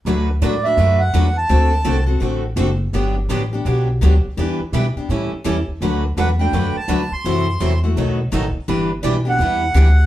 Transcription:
0.05 upright bass D2, steel-string acoustic guitar D3 F#3 A3 D4 F#4 B4
0.41 upright bass A2, steel-string acoustic guitar D3 F#3 A3 D4 F#4 B4, accordion D5
0.64 steel-string acoustic guitar A3 D4 F#4 B4, accordion E5
0.77 upright bass F#2, steel-string acoustic guitar D3 F#3 A3 D4 F#4 B4
1.00 accordion F#5
1.14 upright bass E2, steel-string acoustic guitar D3 F#3 A3 D4 F#4 B4
1.37 accordion A5
1.49 upright bass D2, steel-string acoustic guitar D3 A3 C4 F#4 A4
1.84 upright bass C2, steel-string acoustic guitar D3 A3 C4 F#4 A4
2.06 steel-string acoustic guitar C4 F#4 A4
2.20 upright bass A1, steel-string acoustic guitar D3 A3 C4 F#4 A4
2.56 upright bass F#1, steel-string acoustic guitar D3 A3 C4 F#4 A4
2.93 upright bass G1, steel-string acoustic guitar D3 F#3 B3 D4 G4
3.29 upright bass A1, steel-string acoustic guitar D3 F#3 B3 D4 G4
3.53 steel-string acoustic guitar B3 D4 G4
3.65 upright bass B1, steel-string acoustic guitar D3 F#3 B3 D4 G4
4.01 upright bass D2, steel-string acoustic guitar D3 F#3 B3 D4 G4
4.25 muted upright bass stroke
4.37 upright bass E2, steel-string acoustic guitar E3 G3 B3 D4 E4 G4 B4
4.60 muted upright bass stroke
4.72 upright bass B2, steel-string acoustic guitar E3 G3 B3 D4 E4 G4 B4
4.96 steel-string acoustic guitar B3 D4 G4, muted upright bass stroke
5.09 upright bass A2, steel-string acoustic guitar E3 G3 C#4 E4 A4
5.31 muted upright bass stroke
5.44 upright bass E2, steel-string acoustic guitar E3 G3 C#4 E4 A4
5.68 muted upright bass stroke
5.81 upright bass D2, steel-string acoustic guitar D3 F#3 A3 D4 F#4 B4
6.17 upright bass E2, steel-string acoustic guitar D3 F#3 A3 D4 F#4 B4, accordion F#5
6.39 steel-string acoustic guitar A3 D4 F#4 B4, accordion G5
6.53 upright bass F#2, steel-string acoustic guitar D3 F#3 A3 D4 F#4 B4
6.75 accordion A5, muted upright bass stroke
6.88 upright bass D2, steel-string acoustic guitar D3 F#3 A3 D4 F#4 B4
7.11 accordion C6, muted upright bass stroke
7.24 upright bass F#2, steel-string acoustic guitar C3 E3 F#3 A3 C4 E4 F#4 A4
7.60 upright bass E2, steel-string acoustic guitar C3 E3 F#3 A3 C4 E4 F#4 A4
7.84 steel-string acoustic guitar A3 E4 F#4
7.96 upright bass B1, steel-string acoustic guitar B2 D#3 F#3 A3 B3 D#4 F#4 A4
8.32 upright bass A1, steel-string acoustic guitar B2 D#3 F#3 A3 B3 D#4 F#4 A4
8.55 muted upright bass stroke
8.68 upright bass G1, steel-string acoustic guitar E3 G3 B3 D4 E4 G4 B4
9.03 upright bass B1, steel-string acoustic guitar E3 G3 B3 D4 E4 G4 B4, accordion D5
9.25 steel-string acoustic guitar B3 D4 G4
9.29 accordion F#5
9.39 upright bass E2, steel-string acoustic guitar E3 G3 B3 D4 E4 G4 B4
9.74 upright bass D2, steel-string acoustic guitar E3 G3 B3 D4 E4 G4 B4

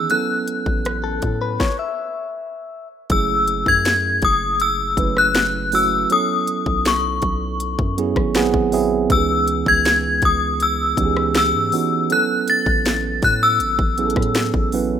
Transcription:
Already playing: tine electric piano D#3 E3 B3 C#4 D#4 G#4, synth bell E6
0.10 tine electric piano F#3 B3 C#4 E4 A4, synth bell F#6, closed hi-hat
0.48 closed hi-hat
0.66 808-style bass A1, kick
0.85 cross-stick, closed hi-hat
1.04 clean electric guitar A4
1.22 808-style bass A2, kick, closed hi-hat
1.41 clean electric guitar B4
1.60 clean electric guitar C#5, kick, snare
1.79 clean electric guitar E5
3.10 808-style bass F#1, tine electric piano F#3 G#3 C#4 E4 G#4, synth bell E6, kick, closed hi-hat
3.17 tine electric piano A3
3.48 closed hi-hat
3.66 808-style bass F#2, synth bell G#6, kick
3.85 snare, closed hi-hat
4.22 808-style bass F#1, synth bell D#6, kick, closed hi-hat
4.60 synth bell E6, closed hi-hat
4.97 808-style bass F#1, tine electric piano F#3 A3 C#4 E4 B4, kick, closed hi-hat
5.17 synth bell F#6, cross-stick
5.34 snare, closed hi-hat
5.72 tine electric piano F#3 A3 C#4 E4 F#4, synth bell E6, open hi-hat
6.10 tine electric piano F#3 B3 C#4 E4 A4, synth bell D#6, closed hi-hat
6.47 closed hi-hat
6.66 808-style bass B1, kick
6.85 synth bell C#6, snare, closed hi-hat
7.22 808-style bass B1, kick, closed hi-hat
7.60 closed hi-hat
7.79 808-style bass F#2, kick
7.98 tine electric piano F#3 B3 C#4 E4 G#4, closed hi-hat
8.16 808-style bass G#1, kick, cross-stick
8.35 tine electric piano F#3 B3 C4 E4 G#4 F#5, snare, closed hi-hat
8.54 808-style bass G#1, kick
8.72 tine electric piano F#3 B3 C4 E4 G#4 E5, open hi-hat
9.09 808-style bass C#2, tine electric piano E3 B3 C#4 D#4 G4, synth bell E6, kick, closed hi-hat
9.18 tine electric piano G#4
9.48 closed hi-hat
9.66 808-style bass C#2, synth bell G#6, kick
9.85 snare, closed hi-hat
10.22 808-style bass C#2, synth bell D#6, kick, closed hi-hat
10.60 synth bell E6, closed hi-hat
10.97 808-style bass C#2, tine electric piano E3 B3 C#4 D#4 G4, kick, closed hi-hat
11.05 tine electric piano G#4
11.17 cross-stick
11.34 synth bell E6, snare, closed hi-hat
11.54 808-style bass G#2
11.72 tine electric piano E3 B3 C#4 D#4 F#4, open hi-hat
12.10 tine electric piano F#3 B3 C#4 E4 A4, synth bell F#6, closed hi-hat
12.48 synth bell A6, closed hi-hat
12.66 808-style bass A1, kick
12.85 snare, closed hi-hat
13.22 808-style bass A2, synth bell F#6, kick, open hi-hat
13.43 synth bell E6
13.60 808-style bass G#1, closed hi-hat
13.79 808-style bass A1, kick
13.98 tine electric piano F#3 B3 C#4 E4 G#4, closed hi-hat
14.06 tine electric piano A4
14.10 closed hi-hat
14.16 808-style bass A2, kick, cross-stick
14.22 closed hi-hat
14.35 snare, closed hi-hat
14.54 808-style bass A1, kick
14.72 tine electric piano F#3 B3 C#4 E4 B4, open hi-hat

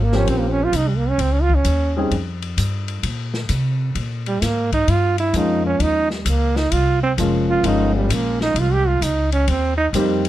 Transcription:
Already playing: upright bass G#1
0.04 trombone A#3
0.12 upright piano F3 A#3 C4 C#4 G4, snare
0.17 trombone C#4
0.27 upright bass A#1, trombone C4, ride
0.40 trombone A#3
0.51 trombone C#4
0.64 trombone F4
0.72 upright bass C2, hi-hat pedal, ride
0.76 trombone D#4
0.89 trombone G3
0.97 trombone A#3
1.10 trombone C#4
1.18 upright bass C#2, trombone C4, ride
1.33 trombone C#4
1.42 trombone F4
1.49 kick
1.55 trombone C#4
1.65 upright bass D#2, hi-hat pedal, ride
1.96 upright piano G3 C4 C#4 D#4 G#4
2.11 upright bass F2, ride
2.42 ride
2.57 upright bass G2, hi-hat pedal, ride
2.88 ride
3.03 upright bass A#2, ride
3.34 snare
3.49 upright bass C3, hi-hat pedal, ride
3.95 upright bass A#2, ride
4.26 trombone G3, ride
4.42 upright bass G#2, trombone A#3, snare, hi-hat pedal, ride
4.72 trombone D#4, kick, ride
4.88 upright bass G2, trombone F4, ride
5.18 trombone E4, ride
5.33 upright bass F2, upright piano F3 G#3 A#3 C#4 F4, trombone D#4, hi-hat pedal, ride
5.67 trombone C#4
5.79 upright bass D#2, trombone D#4, ride
6.10 trombone G3, snare
6.25 upright bass C#2, hi-hat pedal, ride
6.29 trombone A#3
6.56 trombone D#4, snare
6.72 upright bass C2, trombone F4, ride
7.03 trombone C4
7.18 upright bass F1, upright piano F3 G#3 A#3 C#4 F4, hi-hat pedal, ride
7.50 trombone F4
7.63 upright bass G1, upright piano F3 G#3 A#3 C#4 F4, trombone D#4, ride
7.96 trombone G3
8.09 upright bass A#1, trombone A#3, hi-hat pedal, ride
8.41 trombone D#4, snare
8.54 upright bass C2, ride
8.60 trombone F4
8.73 trombone G4
8.88 trombone F4
9.01 upright bass C#2, trombone D#4, hi-hat pedal, ride
9.32 trombone C#4, ride
9.48 upright bass D#2, trombone C4, ride
9.78 trombone D#4
9.93 upright bass F2, upright piano G3 A#3 C4 D#4 G4, hi-hat pedal, ride
10.25 ride

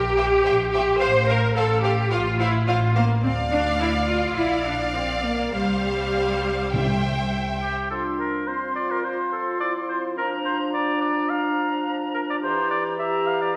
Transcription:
Already playing: double bass section A#1, cello section G4, viola section G4
0.17 violin section C5 E5 G5
0.45 double bass section A#1, violin section C5 E5 G5
0.72 cello section G4, viola section G4, violin section C5 E5 G5
1.00 double bass section A1, viola section C5, violin section C5 F5, cello section C5
1.28 viola section A#4, cello section A#4, violin section C5 F5
1.56 double bass section A1, viola section A4, cello section A4, violin section C5 F5
1.83 viola section G4, cello section G4, violin section C5 F5
2.11 double bass section A1, cello section F4, viola section F4, violin section C5 F5
2.40 cello section E4, viola section E4, violin section C5 F5
2.67 double bass section A1, cello section F4, viola section F4, violin section C5 F5
2.95 cello section A#3, viola section A#3, violin section C5 F5
3.22 double bass section D2, cello section C4, viola section C4, violin section D5 F5
3.52 cello section D4, viola section D4
3.80 cello section E4, viola section E4
4.08 cello section F4, viola section F4
4.36 double bass section A#1, viola section E4, cello section E4, violin section D5 F5
4.65 cello section D4, viola section D4
4.94 viola section C4, cello section C4
5.23 viola section A#3, cello section A#3
5.53 double bass section C2, viola section G3, cello section G3, violin section C5 F5
6.73 timpani C3, violin section C5 E5 G5
7.62 oboe G4
7.91 bassoon F3, french horn section D4, clarinet F4, oboe A4, flute C6
8.19 oboe A#4
8.47 french horn section C4, clarinet F4, oboe C5, flute C6
8.76 oboe D5
8.91 oboe A#4
9.04 clarinet F4, oboe C5, flute C6
9.33 oboe A4
9.60 clarinet E4, oboe D5
9.89 oboe C5
10.17 clarinet D4, french horn section D4, oboe A#4, flute A#5
10.45 oboe C5
10.74 clarinet D4, oboe D5, flute A#5
11.01 oboe D5
11.30 clarinet D4, oboe F5, flute A#5
12.14 oboe A#4
12.30 oboe D5
12.42 bassoon E3, french horn section E4, clarinet G4, oboe C5, flute A#5
12.71 oboe D5
12.99 clarinet G4, french horn section G4, oboe E5, flute A#5
13.27 oboe F5
13.41 oboe D5

